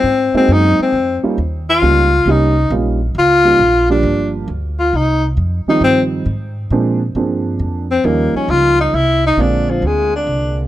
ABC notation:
X:1
M:3/4
L:1/16
Q:"Swing" 1/4=135
K:Bbdor
V:1 name="Tenor saxophone"
C2 C2 E2 C4 z2 | z2 F6 E4 | z4 F6 =D2- | =D2 z4 F2 E2 z2 |
z2 E2 C2 z6 | z8 z2 C2 | B,2 D2 F2 E2 _F2 E2 | =D2 F,2 A,2 D4- D z |]
V:2 name="Upright piano"
z2 [A,B,CE_G]6 z2 [=G,B,DEF]2 | z4 [G,B,DEF]2 z2 [G,B,DEG]2 z2 | [G,B,DEF]2 z4 [G,B,DEF]2 z2 [F,G,B,=DG]2- | [F,G,B,=DG]4 z8 |
z2 [E,F,G,CE]6 z4 | [F,A,B,C=D]2 z2 [F,B,CDA]6 z2 | [F,G,B,DE]8 z4 | [=D,A,B,CF]8- [D,A,B,CF]2 z2 |]
V:3 name="Upright bass" clef=bass
A,,2 z2 _G,,2 z2 F,,2 z2 | E,,4 D,,4 C,,4 | B,,,4 D,,4 B,,,4 | G,,,4 =D,,4 C,,4 |
F,,2 z2 G,,4 A,,4 | B,,4 G,,4 F,,4 | E,,2 z2 D,,4 C,,4 | B,,,4 =D,,4 C,,4 |]